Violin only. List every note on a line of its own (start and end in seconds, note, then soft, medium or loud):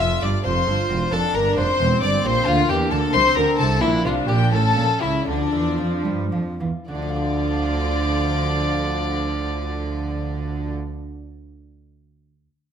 0.00 0.24 E5 medium
0.22 0.44 D5 medium
0.44 1.14 C5 loud
1.12 1.37 A4 loud
1.35 1.59 A#4 loud
1.58 2.02 C5 loud
2.03 2.27 D5 medium
2.26 2.49 C5 loud
2.48 2.71 F4 loud
2.70 2.92 G4 loud
2.93 3.16 A4 loud
3.14 3.38 C5 loud
3.36 3.58 A#4 loud
3.58 3.83 A4 loud
3.81 4.05 E4 loud
4.06 4.14 F4 medium
4.28 4.36 G4 medium
4.53 5.04 A4 loud
5.02 5.27 E4 medium
5.28 6.04 D4 medium
6.88 10.71 D5 medium